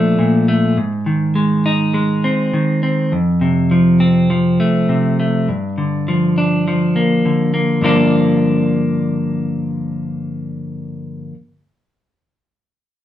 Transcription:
0, 0, Header, 1, 3, 480
1, 0, Start_track
1, 0, Key_signature, -2, "minor"
1, 0, Tempo, 588235
1, 628, Time_signature, 4, 2, 24, 8
1, 10648, End_track
2, 0, Start_track
2, 0, Title_t, "Pedal steel guitar"
2, 0, Program_c, 0, 26
2, 0, Note_on_c, 0, 57, 38
2, 0, Note_on_c, 0, 77, 42
2, 0, Note_on_c, 0, 82, 49
2, 590, Note_off_c, 0, 77, 0
2, 610, Note_off_c, 0, 82, 0
2, 611, Note_off_c, 0, 57, 0
2, 10648, End_track
3, 0, Start_track
3, 0, Title_t, "Clean electric guitar"
3, 0, Program_c, 1, 27
3, 0, Note_on_c, 1, 46, 46
3, 0, Note_on_c, 1, 53, 48
3, 0, Note_on_c, 1, 57, 45
3, 0, Note_on_c, 1, 62, 51
3, 143, Note_off_c, 1, 46, 0
3, 153, Note_on_c, 1, 46, 47
3, 384, Note_off_c, 1, 57, 0
3, 394, Note_on_c, 1, 57, 46
3, 629, Note_on_c, 1, 44, 46
3, 630, Note_off_c, 1, 46, 0
3, 630, Note_off_c, 1, 53, 0
3, 631, Note_off_c, 1, 57, 0
3, 632, Note_off_c, 1, 62, 0
3, 868, Note_on_c, 1, 51, 46
3, 1105, Note_on_c, 1, 56, 47
3, 1352, Note_on_c, 1, 63, 54
3, 1574, Note_off_c, 1, 56, 0
3, 1584, Note_on_c, 1, 56, 50
3, 1828, Note_off_c, 1, 44, 0
3, 1830, Note_on_c, 1, 60, 47
3, 2059, Note_off_c, 1, 51, 0
3, 2069, Note_on_c, 1, 51, 50
3, 2299, Note_off_c, 1, 60, 0
3, 2309, Note_on_c, 1, 60, 39
3, 2546, Note_off_c, 1, 56, 0
3, 2548, Note_off_c, 1, 51, 0
3, 2548, Note_off_c, 1, 60, 0
3, 2548, Note_on_c, 1, 41, 51
3, 2550, Note_off_c, 1, 63, 0
3, 2785, Note_on_c, 1, 48, 46
3, 3029, Note_on_c, 1, 53, 48
3, 3265, Note_on_c, 1, 60, 50
3, 3506, Note_off_c, 1, 53, 0
3, 3510, Note_on_c, 1, 53, 45
3, 3748, Note_off_c, 1, 41, 0
3, 3753, Note_on_c, 1, 57, 43
3, 3982, Note_off_c, 1, 48, 0
3, 3991, Note_on_c, 1, 48, 41
3, 4230, Note_off_c, 1, 57, 0
3, 4240, Note_on_c, 1, 57, 39
3, 4467, Note_off_c, 1, 60, 0
3, 4470, Note_off_c, 1, 48, 0
3, 4474, Note_off_c, 1, 57, 0
3, 4478, Note_on_c, 1, 43, 48
3, 4502, Note_off_c, 1, 53, 0
3, 4715, Note_on_c, 1, 50, 41
3, 4963, Note_on_c, 1, 53, 47
3, 5204, Note_on_c, 1, 62, 48
3, 5439, Note_off_c, 1, 53, 0
3, 5448, Note_on_c, 1, 53, 43
3, 5673, Note_off_c, 1, 43, 0
3, 5678, Note_on_c, 1, 58, 42
3, 5909, Note_off_c, 1, 50, 0
3, 5919, Note_on_c, 1, 50, 44
3, 6141, Note_off_c, 1, 58, 0
3, 6150, Note_on_c, 1, 58, 37
3, 6376, Note_off_c, 1, 50, 0
3, 6377, Note_on_c, 1, 43, 54
3, 6385, Note_on_c, 1, 50, 52
3, 6386, Note_off_c, 1, 53, 0
3, 6390, Note_off_c, 1, 58, 0
3, 6395, Note_on_c, 1, 53, 57
3, 6396, Note_off_c, 1, 62, 0
3, 6401, Note_on_c, 1, 58, 62
3, 6410, Note_on_c, 1, 62, 69
3, 9233, Note_off_c, 1, 43, 0
3, 9241, Note_off_c, 1, 50, 0
3, 9251, Note_off_c, 1, 53, 0
3, 9257, Note_off_c, 1, 58, 0
3, 9266, Note_off_c, 1, 62, 0
3, 10648, End_track
0, 0, End_of_file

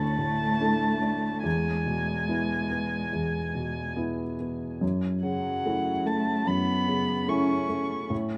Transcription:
0, 0, Header, 1, 4, 480
1, 0, Start_track
1, 0, Key_signature, 3, "minor"
1, 0, Tempo, 840336
1, 828, Time_signature, 4, 2, 24, 8
1, 2753, Tempo, 820793
1, 4833, End_track
2, 0, Start_track
2, 0, Title_t, "Violin"
2, 0, Program_c, 0, 40
2, 0, Note_on_c, 0, 81, 62
2, 826, Note_off_c, 0, 81, 0
2, 830, Note_on_c, 0, 80, 49
2, 2249, Note_off_c, 0, 80, 0
2, 2998, Note_on_c, 0, 78, 51
2, 3482, Note_on_c, 0, 81, 50
2, 3491, Note_off_c, 0, 78, 0
2, 3719, Note_on_c, 0, 83, 56
2, 3728, Note_off_c, 0, 81, 0
2, 4197, Note_on_c, 0, 85, 50
2, 4205, Note_off_c, 0, 83, 0
2, 4675, Note_off_c, 0, 85, 0
2, 4833, End_track
3, 0, Start_track
3, 0, Title_t, "Cello"
3, 0, Program_c, 1, 42
3, 0, Note_on_c, 1, 57, 69
3, 822, Note_on_c, 1, 56, 60
3, 831, Note_off_c, 1, 57, 0
3, 2268, Note_off_c, 1, 56, 0
3, 2991, Note_on_c, 1, 54, 58
3, 3478, Note_on_c, 1, 57, 58
3, 3487, Note_off_c, 1, 54, 0
3, 3716, Note_on_c, 1, 59, 67
3, 3725, Note_off_c, 1, 57, 0
3, 4196, Note_on_c, 1, 61, 58
3, 4204, Note_off_c, 1, 59, 0
3, 4674, Note_off_c, 1, 61, 0
3, 4833, End_track
4, 0, Start_track
4, 0, Title_t, "Felt piano"
4, 0, Program_c, 2, 0
4, 0, Control_c, 2, 64, 127
4, 0, Note_on_c, 2, 38, 42
4, 0, Note_on_c, 2, 45, 38
4, 0, Note_on_c, 2, 50, 40
4, 0, Note_on_c, 2, 62, 35
4, 0, Note_on_c, 2, 64, 37
4, 0, Note_on_c, 2, 69, 39
4, 104, Note_off_c, 2, 45, 0
4, 104, Note_on_c, 2, 45, 35
4, 344, Note_off_c, 2, 62, 0
4, 344, Note_on_c, 2, 62, 33
4, 347, Note_off_c, 2, 64, 0
4, 347, Note_on_c, 2, 64, 31
4, 350, Note_off_c, 2, 69, 0
4, 350, Note_on_c, 2, 69, 39
4, 488, Note_off_c, 2, 45, 0
4, 562, Note_off_c, 2, 62, 0
4, 563, Note_off_c, 2, 64, 0
4, 565, Note_off_c, 2, 69, 0
4, 580, Note_on_c, 2, 62, 35
4, 803, Note_off_c, 2, 38, 0
4, 820, Note_on_c, 2, 40, 43
4, 824, Note_off_c, 2, 62, 0
4, 839, Control_c, 2, 64, 0
4, 844, Note_off_c, 2, 50, 0
4, 947, Control_c, 2, 64, 127
4, 1062, Note_on_c, 2, 47, 32
4, 1307, Note_on_c, 2, 59, 31
4, 1309, Note_on_c, 2, 64, 32
4, 1449, Note_off_c, 2, 47, 0
4, 1525, Note_off_c, 2, 59, 0
4, 1526, Note_off_c, 2, 64, 0
4, 1544, Note_on_c, 2, 59, 32
4, 1762, Note_off_c, 2, 40, 0
4, 1787, Note_on_c, 2, 40, 33
4, 1930, Note_off_c, 2, 59, 0
4, 2027, Note_on_c, 2, 47, 32
4, 2263, Note_on_c, 2, 59, 30
4, 2266, Note_on_c, 2, 64, 32
4, 2415, Note_off_c, 2, 47, 0
4, 2487, Note_off_c, 2, 59, 0
4, 2488, Note_off_c, 2, 64, 0
4, 2513, Note_on_c, 2, 59, 31
4, 2730, Note_off_c, 2, 40, 0
4, 2750, Note_on_c, 2, 42, 45
4, 2753, Note_off_c, 2, 59, 0
4, 2764, Control_c, 2, 64, 0
4, 2855, Control_c, 2, 64, 127
4, 2992, Note_on_c, 2, 49, 34
4, 3242, Note_on_c, 2, 57, 33
4, 3244, Note_on_c, 2, 61, 33
4, 3246, Note_on_c, 2, 64, 36
4, 3383, Note_off_c, 2, 49, 0
4, 3459, Note_off_c, 2, 57, 0
4, 3460, Note_off_c, 2, 61, 0
4, 3461, Note_off_c, 2, 64, 0
4, 3477, Note_on_c, 2, 57, 32
4, 3696, Note_off_c, 2, 42, 0
4, 3719, Note_on_c, 2, 42, 39
4, 3862, Note_off_c, 2, 57, 0
4, 3955, Note_on_c, 2, 49, 33
4, 4192, Note_on_c, 2, 57, 33
4, 4193, Note_on_c, 2, 61, 36
4, 4197, Note_on_c, 2, 64, 37
4, 4337, Note_off_c, 2, 49, 0
4, 4409, Note_off_c, 2, 57, 0
4, 4410, Note_off_c, 2, 61, 0
4, 4412, Note_off_c, 2, 64, 0
4, 4430, Note_on_c, 2, 57, 36
4, 4650, Note_off_c, 2, 42, 0
4, 4672, Note_off_c, 2, 57, 0
4, 4672, Note_on_c, 2, 45, 49
4, 4686, Control_c, 2, 64, 0
4, 4770, Control_c, 2, 64, 127
4, 4833, Note_off_c, 2, 45, 0
4, 4833, End_track
0, 0, End_of_file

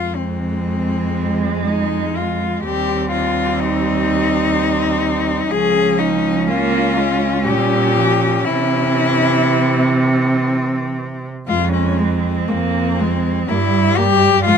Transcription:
0, 0, Header, 1, 5, 480
1, 0, Start_track
1, 0, Key_signature, -4, "minor"
1, 0, Tempo, 993377
1, 1280, Time_signature, 3, 2, 24, 8
1, 1280, Tempo, 963082
1, 3680, Tempo, 1000000
1, 7094, End_track
2, 0, Start_track
2, 0, Title_t, "Cello"
2, 0, Program_c, 0, 42
2, 0, Note_on_c, 0, 65, 72
2, 76, Note_on_c, 0, 60, 57
2, 83, Note_off_c, 0, 65, 0
2, 804, Note_on_c, 0, 63, 71
2, 811, Note_off_c, 0, 60, 0
2, 1050, Note_on_c, 0, 65, 62
2, 1057, Note_off_c, 0, 63, 0
2, 1273, Note_off_c, 0, 65, 0
2, 1276, Note_on_c, 0, 67, 77
2, 1509, Note_off_c, 0, 67, 0
2, 1512, Note_on_c, 0, 65, 75
2, 1755, Note_on_c, 0, 63, 85
2, 1762, Note_off_c, 0, 65, 0
2, 2708, Note_on_c, 0, 68, 92
2, 2715, Note_off_c, 0, 63, 0
2, 2946, Note_on_c, 0, 63, 77
2, 2953, Note_off_c, 0, 68, 0
2, 3188, Note_on_c, 0, 65, 74
2, 3195, Note_off_c, 0, 63, 0
2, 3674, Note_off_c, 0, 65, 0
2, 3677, Note_on_c, 0, 67, 87
2, 4151, Note_on_c, 0, 64, 80
2, 4159, Note_off_c, 0, 67, 0
2, 5121, Note_off_c, 0, 64, 0
2, 5608, Note_on_c, 0, 65, 82
2, 5720, Note_off_c, 0, 65, 0
2, 5727, Note_on_c, 0, 61, 69
2, 5845, Note_on_c, 0, 60, 72
2, 5852, Note_off_c, 0, 61, 0
2, 6571, Note_on_c, 0, 64, 84
2, 6578, Note_off_c, 0, 60, 0
2, 6805, Note_on_c, 0, 67, 101
2, 6812, Note_off_c, 0, 64, 0
2, 7034, Note_off_c, 0, 67, 0
2, 7037, Note_on_c, 0, 65, 108
2, 7094, Note_off_c, 0, 65, 0
2, 7094, End_track
3, 0, Start_track
3, 0, Title_t, "Cello"
3, 0, Program_c, 1, 42
3, 0, Note_on_c, 1, 56, 47
3, 1272, Note_on_c, 1, 60, 53
3, 1280, Note_off_c, 1, 56, 0
3, 2704, Note_off_c, 1, 60, 0
3, 2707, Note_on_c, 1, 61, 64
3, 4641, Note_on_c, 1, 60, 54
3, 4648, Note_off_c, 1, 61, 0
3, 5515, Note_off_c, 1, 60, 0
3, 5607, Note_on_c, 1, 56, 58
3, 5645, Note_off_c, 1, 56, 0
3, 5850, Note_on_c, 1, 56, 54
3, 5889, Note_off_c, 1, 56, 0
3, 6089, Note_on_c, 1, 56, 54
3, 6127, Note_off_c, 1, 56, 0
3, 6334, Note_on_c, 1, 56, 58
3, 6372, Note_off_c, 1, 56, 0
3, 6573, Note_on_c, 1, 58, 56
3, 6611, Note_off_c, 1, 58, 0
3, 6807, Note_on_c, 1, 58, 57
3, 6846, Note_off_c, 1, 58, 0
3, 7041, Note_on_c, 1, 56, 71
3, 7079, Note_off_c, 1, 56, 0
3, 7094, End_track
4, 0, Start_track
4, 0, Title_t, "Cello"
4, 0, Program_c, 2, 42
4, 331, Note_on_c, 2, 56, 64
4, 1284, Note_on_c, 2, 55, 59
4, 1291, Note_off_c, 2, 56, 0
4, 2701, Note_off_c, 2, 55, 0
4, 2704, Note_on_c, 2, 53, 65
4, 3187, Note_on_c, 2, 58, 82
4, 3195, Note_off_c, 2, 53, 0
4, 3434, Note_on_c, 2, 56, 64
4, 3442, Note_off_c, 2, 58, 0
4, 3679, Note_on_c, 2, 55, 65
4, 3686, Note_off_c, 2, 56, 0
4, 3912, Note_on_c, 2, 53, 55
4, 3919, Note_off_c, 2, 55, 0
4, 4149, Note_off_c, 2, 53, 0
4, 4152, Note_on_c, 2, 52, 55
4, 5347, Note_off_c, 2, 52, 0
4, 5610, Note_on_c, 2, 56, 64
4, 6090, Note_on_c, 2, 58, 72
4, 6097, Note_off_c, 2, 56, 0
4, 6336, Note_on_c, 2, 56, 69
4, 6344, Note_off_c, 2, 58, 0
4, 6570, Note_off_c, 2, 56, 0
4, 6573, Note_on_c, 2, 55, 75
4, 7042, Note_on_c, 2, 53, 77
4, 7050, Note_off_c, 2, 55, 0
4, 7094, Note_off_c, 2, 53, 0
4, 7094, End_track
5, 0, Start_track
5, 0, Title_t, "Cello"
5, 0, Program_c, 3, 42
5, 0, Note_on_c, 3, 41, 52
5, 1263, Note_off_c, 3, 41, 0
5, 1282, Note_on_c, 3, 39, 58
5, 2692, Note_off_c, 3, 39, 0
5, 2711, Note_on_c, 3, 37, 62
5, 3680, Note_on_c, 3, 46, 62
5, 3687, Note_off_c, 3, 37, 0
5, 4155, Note_on_c, 3, 48, 69
5, 4162, Note_off_c, 3, 46, 0
5, 5514, Note_off_c, 3, 48, 0
5, 5612, Note_on_c, 3, 41, 72
5, 6037, Note_off_c, 3, 41, 0
5, 6095, Note_on_c, 3, 41, 69
5, 6518, Note_off_c, 3, 41, 0
5, 6572, Note_on_c, 3, 43, 68
5, 6987, Note_off_c, 3, 43, 0
5, 7041, Note_on_c, 3, 44, 83
5, 7094, Note_off_c, 3, 44, 0
5, 7094, End_track
0, 0, End_of_file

